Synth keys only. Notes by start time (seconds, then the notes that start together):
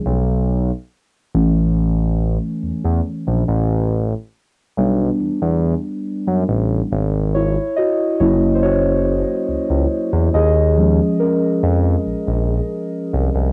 1.35 E3 A3 C#4
4.77 G3 B3 D4
7.34 E4 C#5
7.76 F#4 D#5
8.20 F#3 A#3 C#4 E4 C#5
8.55 C5
8.63 F#4 C#5
10.34 G#4 D#5
10.77 F3 G#3 C#4
11.20 C#4 A#4